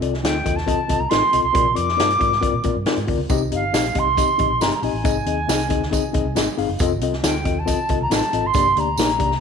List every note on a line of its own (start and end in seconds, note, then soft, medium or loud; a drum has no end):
0.01 0.20 C2 medium
0.01 0.13 C4 medium
0.01 0.13 F4 medium
0.01 0.13 A4 medium
0.01 0.13 D5 medium
0.01 closed hi-hat medium
0.14 snare soft
0.22 0.42 D2 medium
0.22 0.35 C4 medium
0.22 0.35 F4 medium
0.22 0.35 A4 medium
0.22 0.36 D#5 medium
0.22 0.57 G5 medium
0.22 snare loud
0.22 closed hi-hat loud
0.44 0.74 D#2 medium
0.44 0.56 C4 medium
0.44 0.57 F4 medium
0.44 0.57 A4 medium
0.44 0.57 D#5 medium
0.44 kick medium
0.44 closed hi-hat medium
0.56 1.01 A5 medium
0.56 snare soft
0.66 0.78 C4 medium
0.66 0.78 F4 medium
0.66 0.78 A4 medium
0.66 0.79 D#5 loud
0.66 kick medium
0.66 closed hi-hat medium
0.88 0.99 C2 medium
0.88 1.00 C4 medium
0.88 1.00 F4 medium
0.88 1.00 A4 medium
0.88 1.01 D#5 medium
0.88 kick medium
0.88 closed hi-hat medium
1.00 1.10 C2 medium
1.00 1.11 A#5 medium
1.09 1.21 A1 medium
1.09 1.22 C4 medium
1.09 1.22 F4 medium
1.09 1.22 A4 medium
1.09 1.23 D#5 medium
1.09 1.42 C6 medium
1.09 snare medium
1.09 closed hi-hat medium
1.32 1.43 C2 medium
1.32 1.44 C4 medium
1.32 1.44 F4 medium
1.32 1.44 A4 medium
1.32 1.45 D#5 medium
1.32 closed hi-hat medium
1.43 1.53 B1 medium
1.43 1.77 C6 loud
1.53 1.73 A#1 medium
1.53 1.65 C4 medium
1.53 1.65 F4 medium
1.53 1.66 A#4 medium
1.53 1.66 D5 loud
1.53 kick loud
1.53 closed hi-hat medium
1.74 1.96 F2 medium
1.74 1.87 C4 medium
1.74 1.87 F4 medium
1.74 1.87 A#4 medium
1.74 1.87 D5 medium
1.74 2.64 D6 loud
1.74 closed hi-hat medium
1.88 snare soft
1.96 2.18 G2 medium
1.96 2.09 C4 medium
1.96 2.09 F4 medium
1.96 2.09 A#4 medium
1.96 2.09 D5 medium
1.96 snare loud
1.96 closed hi-hat loud
2.10 closed hi-hat medium
2.19 2.39 G#2 medium
2.19 2.31 C4 medium
2.19 2.31 F4 medium
2.19 2.31 A#4 medium
2.19 2.32 D5 medium
2.19 kick medium
2.19 closed hi-hat medium
2.32 snare soft
2.41 2.53 C4 loud
2.41 2.53 F4 medium
2.41 2.53 A#4 medium
2.41 2.54 D5 loud
2.41 kick medium
2.41 closed hi-hat medium
2.53 2.63 A#2 medium
2.63 2.74 A#2 medium
2.63 2.75 C4 medium
2.63 2.75 F4 medium
2.63 2.76 A#4 medium
2.63 2.76 D5 medium
2.63 kick medium
2.63 closed hi-hat medium
2.75 2.85 G2 medium
2.86 2.97 C4 medium
2.86 2.97 F4 medium
2.86 2.98 A#4 medium
2.86 2.98 D5 medium
2.86 snare loud
2.86 closed hi-hat medium
2.96 3.06 G#2 medium
2.96 closed hi-hat medium
3.07 3.18 D2 medium
3.07 3.19 C4 medium
3.07 3.19 F4 medium
3.07 3.19 A#4 medium
3.07 3.19 D5 medium
3.07 kick medium
3.07 open hi-hat medium
3.18 3.28 C#2 medium
3.29 3.52 C2 medium
3.29 3.41 C4 loud
3.29 3.41 D#4 loud
3.29 3.41 G4 loud
3.29 3.42 D#5 loud
3.29 kick loud
3.29 closed hi-hat medium
3.29 tambourine medium
3.51 3.70 G1 medium
3.51 3.63 C4 medium
3.51 3.63 D#4 medium
3.51 3.63 G4 medium
3.51 3.63 D#5 medium
3.51 4.00 F5 medium
3.51 closed hi-hat medium
3.72 3.91 A#1 medium
3.72 3.84 C4 medium
3.72 3.85 D#4 medium
3.72 3.85 G4 medium
3.72 3.85 D#5 medium
3.72 snare loud
3.72 closed hi-hat medium
3.72 tambourine medium
3.85 closed hi-hat medium
3.95 4.23 C2 medium
3.95 4.06 C4 medium
3.95 4.06 D#4 medium
3.95 4.07 G4 medium
3.95 4.07 D#5 medium
3.95 4.63 C6 loud
3.95 kick medium
3.95 closed hi-hat medium
4.17 4.28 C4 medium
4.17 4.28 D#4 medium
4.17 4.29 G4 medium
4.17 4.29 D#5 medium
4.17 kick medium
4.17 closed hi-hat medium
4.17 tambourine medium
4.38 4.49 A#1 medium
4.38 4.50 C4 medium
4.38 4.50 D#4 medium
4.38 4.50 G4 medium
4.38 4.50 D#5 medium
4.38 kick medium
4.38 closed hi-hat medium
4.50 4.59 A#1 medium
4.60 4.70 G1 medium
4.60 4.72 C4 medium
4.60 4.72 D#4 medium
4.60 4.72 G4 medium
4.60 4.73 D#5 medium
4.60 4.74 A#5 medium
4.60 snare medium
4.60 closed hi-hat medium
4.60 tambourine medium
4.71 4.85 A#5 medium
4.71 closed hi-hat soft
4.82 4.92 A#1 medium
4.82 4.94 C4 medium
4.82 4.94 D#4 medium
4.82 4.95 G4 medium
4.82 4.95 D#5 medium
4.82 6.36 G#5 medium
4.82 open hi-hat medium
4.93 5.03 A1 medium
5.04 5.23 G#1 medium
5.04 5.15 C4 medium
5.04 5.15 D#4 medium
5.04 5.16 G#4 medium
5.04 5.16 D#5 loud
5.04 kick loud
5.04 closed hi-hat medium
5.04 tambourine medium
5.25 5.44 D#2 medium
5.25 5.38 C4 medium
5.25 5.38 D#4 medium
5.25 5.38 G#4 medium
5.25 5.38 D#5 medium
5.25 closed hi-hat medium
5.48 5.71 C2 medium
5.48 5.59 C4 medium
5.48 5.60 D#4 medium
5.48 5.60 G#4 medium
5.48 5.60 D#5 medium
5.48 snare loud
5.48 closed hi-hat loud
5.48 tambourine medium
5.60 closed hi-hat medium
5.68 5.98 D2 medium
5.68 5.80 C4 medium
5.68 5.81 D#4 medium
5.68 5.81 G#4 medium
5.68 5.81 D#5 medium
5.68 kick medium
5.68 closed hi-hat medium
5.83 snare soft
5.91 6.03 C4 loud
5.91 6.03 D#4 medium
5.91 6.03 G#4 loud
5.91 6.03 D#5 loud
5.91 kick medium
5.91 closed hi-hat medium
5.91 tambourine medium
6.13 6.24 C2 loud
6.13 6.25 C4 medium
6.13 6.25 D#4 medium
6.13 6.25 G#4 medium
6.13 6.25 D#5 medium
6.13 kick medium
6.13 closed hi-hat medium
6.25 6.34 C2 medium
6.35 6.45 G#1 medium
6.35 6.47 C4 medium
6.35 6.47 D#4 medium
6.35 6.47 G#4 medium
6.35 6.47 D#5 loud
6.35 snare medium
6.35 closed hi-hat medium
6.35 tambourine medium
6.58 6.67 G1 medium
6.58 6.69 C4 medium
6.58 6.69 D#4 medium
6.58 6.69 G#4 medium
6.58 6.69 F5 loud
6.58 open hi-hat medium
6.69 6.78 F#1 medium
6.79 7.01 F1 medium
6.79 6.91 C4 loud
6.79 6.91 F4 loud
6.79 6.91 A4 loud
6.79 6.92 D#5 loud
6.79 kick loud
6.79 closed hi-hat medium
6.79 tambourine medium
7.01 7.20 C2 medium
7.01 7.13 C4 medium
7.01 7.13 F4 medium
7.01 7.13 A4 medium
7.01 7.13 D#5 medium
7.01 closed hi-hat medium
7.13 snare soft
7.23 7.42 D2 medium
7.23 7.34 C4 medium
7.23 7.34 F4 medium
7.23 7.34 A4 medium
7.23 7.35 D#5 medium
7.23 7.60 G5 medium
7.23 snare loud
7.23 closed hi-hat loud
7.23 tambourine medium
7.44 7.73 D#2 medium
7.44 7.56 C4 medium
7.44 7.56 F4 medium
7.44 7.56 A4 medium
7.44 7.56 D#5 medium
7.44 kick medium
7.44 closed hi-hat medium
7.59 8.01 A5 medium
7.65 7.77 C4 medium
7.65 7.78 F4 medium
7.65 7.78 A4 medium
7.65 7.78 D#5 loud
7.65 kick medium
7.65 closed hi-hat medium
7.65 tambourine medium
7.89 7.99 C2 medium
7.89 8.00 C4 medium
7.89 8.00 F4 medium
7.89 8.00 A4 medium
7.89 8.01 D#5 medium
7.89 kick medium
7.89 closed hi-hat medium
8.01 8.09 C2 medium
8.01 8.11 A#5 medium
8.10 8.20 A1 medium
8.10 8.21 C4 medium
8.10 8.22 F4 medium
8.10 8.22 A4 medium
8.10 8.22 D#5 medium
8.10 snare loud
8.10 closed hi-hat medium
8.10 tambourine medium
8.14 8.48 A5 medium
8.22 closed hi-hat medium
8.33 8.42 A1 medium
8.33 8.44 C4 medium
8.33 8.44 F4 medium
8.33 8.44 A4 medium
8.33 8.44 D#5 medium
8.33 closed hi-hat medium
8.44 8.53 G#1 medium
8.44 8.81 C6 loud
8.54 8.73 G1 loud
8.54 8.65 A#3 loud
8.54 8.65 D4 medium
8.54 8.66 G4 medium
8.54 8.66 D5 loud
8.54 kick loud
8.54 closed hi-hat medium
8.54 tambourine medium
8.76 8.95 D2 medium
8.76 8.87 A#3 medium
8.76 8.88 D4 medium
8.76 8.88 G4 medium
8.76 8.88 D5 medium
8.76 9.40 A#5 medium
8.76 closed hi-hat medium
8.97 9.16 A#1 medium
8.97 9.09 A#3 medium
8.97 9.09 D4 medium
8.97 9.09 G4 medium
8.97 9.10 D5 medium
8.97 snare loud
8.97 closed hi-hat loud
8.97 tambourine medium
9.10 closed hi-hat medium
9.18 9.38 C2 medium
9.18 9.30 A#3 medium
9.18 9.30 D4 medium
9.18 9.31 G4 medium
9.18 9.31 D5 medium
9.18 kick medium
9.18 closed hi-hat medium
9.31 snare soft